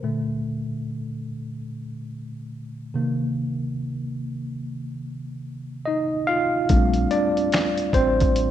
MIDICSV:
0, 0, Header, 1, 4, 480
1, 0, Start_track
1, 0, Key_signature, -2, "major"
1, 0, Tempo, 833333
1, 16, Time_signature, 4, 2, 24, 8
1, 4900, End_track
2, 0, Start_track
2, 0, Title_t, "Tine electric piano"
2, 0, Program_c, 0, 4
2, 0, Control_c, 0, 64, 127
2, 17, Note_on_c, 0, 46, 49
2, 20, Note_on_c, 0, 50, 45
2, 23, Note_on_c, 0, 57, 58
2, 24, Control_c, 0, 64, 0
2, 125, Control_c, 0, 64, 127
2, 357, Note_off_c, 0, 46, 0
2, 359, Note_off_c, 0, 50, 0
2, 360, Note_off_c, 0, 57, 0
2, 1694, Note_on_c, 0, 48, 51
2, 1700, Note_on_c, 0, 51, 47
2, 1703, Note_on_c, 0, 58, 55
2, 1705, Control_c, 0, 64, 0
2, 1793, Control_c, 0, 64, 127
2, 2036, Note_off_c, 0, 48, 0
2, 2038, Note_off_c, 0, 51, 0
2, 2040, Note_off_c, 0, 58, 0
2, 3373, Note_on_c, 0, 75, 81
2, 3384, Note_on_c, 0, 63, 70
2, 3481, Note_off_c, 0, 75, 0
2, 3490, Note_off_c, 0, 63, 0
2, 3612, Note_on_c, 0, 77, 90
2, 3621, Note_on_c, 0, 65, 72
2, 3855, Note_on_c, 0, 55, 58
2, 3858, Note_on_c, 0, 57, 53
2, 3859, Note_on_c, 0, 60, 52
2, 3861, Note_on_c, 0, 62, 62
2, 3864, Control_c, 0, 64, 0
2, 3968, Control_c, 0, 64, 127
2, 4076, Note_off_c, 0, 65, 0
2, 4095, Note_on_c, 0, 74, 97
2, 4098, Note_off_c, 0, 62, 0
2, 4104, Note_on_c, 0, 62, 72
2, 4109, Note_off_c, 0, 77, 0
2, 4196, Note_off_c, 0, 55, 0
2, 4197, Note_off_c, 0, 57, 0
2, 4198, Note_off_c, 0, 60, 0
2, 4557, Note_off_c, 0, 62, 0
2, 4575, Note_on_c, 0, 72, 93
2, 4583, Note_on_c, 0, 60, 75
2, 4590, Note_off_c, 0, 74, 0
2, 4900, Note_off_c, 0, 60, 0
2, 4900, Note_off_c, 0, 72, 0
2, 4900, End_track
3, 0, Start_track
3, 0, Title_t, "Sub bass"
3, 0, Program_c, 1, 38
3, 3861, Note_on_c, 1, 34, 116
3, 4070, Note_off_c, 1, 34, 0
3, 4572, Note_on_c, 1, 33, 82
3, 4900, Note_off_c, 1, 33, 0
3, 4900, End_track
4, 0, Start_track
4, 0, Title_t, "Drums"
4, 3854, Note_on_c, 9, 42, 69
4, 3857, Note_on_c, 9, 36, 113
4, 3912, Note_off_c, 9, 42, 0
4, 3915, Note_off_c, 9, 36, 0
4, 3995, Note_on_c, 9, 42, 51
4, 4052, Note_off_c, 9, 42, 0
4, 4094, Note_on_c, 9, 42, 57
4, 4152, Note_off_c, 9, 42, 0
4, 4246, Note_on_c, 9, 42, 48
4, 4303, Note_off_c, 9, 42, 0
4, 4334, Note_on_c, 9, 42, 75
4, 4340, Note_on_c, 9, 26, 87
4, 4345, Note_on_c, 9, 38, 104
4, 4391, Note_off_c, 9, 42, 0
4, 4398, Note_off_c, 9, 26, 0
4, 4402, Note_off_c, 9, 38, 0
4, 4479, Note_on_c, 9, 42, 52
4, 4536, Note_off_c, 9, 42, 0
4, 4569, Note_on_c, 9, 36, 87
4, 4574, Note_on_c, 9, 42, 60
4, 4626, Note_off_c, 9, 36, 0
4, 4631, Note_off_c, 9, 42, 0
4, 4726, Note_on_c, 9, 42, 51
4, 4731, Note_on_c, 9, 36, 95
4, 4783, Note_off_c, 9, 42, 0
4, 4789, Note_off_c, 9, 36, 0
4, 4814, Note_on_c, 9, 42, 82
4, 4872, Note_off_c, 9, 42, 0
4, 4900, End_track
0, 0, End_of_file